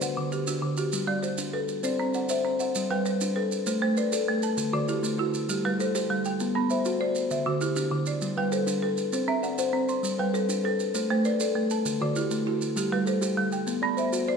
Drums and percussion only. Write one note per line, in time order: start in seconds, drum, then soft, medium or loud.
0.02 maracas medium
0.32 maracas medium
0.47 maracas medium
0.77 maracas medium
0.93 maracas medium
1.23 maracas medium
1.38 maracas medium
1.68 maracas medium
1.84 maracas medium
2.14 maracas medium
2.29 maracas medium
2.60 maracas medium
2.75 maracas medium
3.06 maracas medium
3.21 maracas medium
3.52 maracas medium
3.67 maracas medium
3.97 maracas medium
4.12 maracas medium
4.42 maracas medium
4.58 maracas medium
4.88 maracas medium
5.04 maracas medium
5.34 maracas medium
5.49 maracas medium
5.80 maracas medium
5.95 maracas medium
6.25 maracas medium
6.40 maracas medium
6.70 maracas medium
6.85 maracas medium
7.15 maracas medium
7.31 maracas medium
7.61 maracas medium
7.76 maracas medium
8.06 maracas medium
8.21 maracas medium
8.52 maracas medium
8.67 maracas medium
8.97 maracas medium
9.13 maracas medium
9.44 maracas medium
9.58 maracas medium
9.89 maracas medium
10.04 maracas medium
10.34 maracas medium
10.49 maracas medium
10.80 maracas medium
10.95 maracas medium
11.25 maracas medium
11.40 maracas medium
11.70 maracas medium
11.86 maracas medium
12.16 maracas medium
12.31 maracas medium
12.62 maracas medium
12.77 maracas medium
13.07 maracas medium
13.22 maracas medium
13.52 maracas medium
13.67 maracas medium
13.97 maracas medium
14.13 maracas medium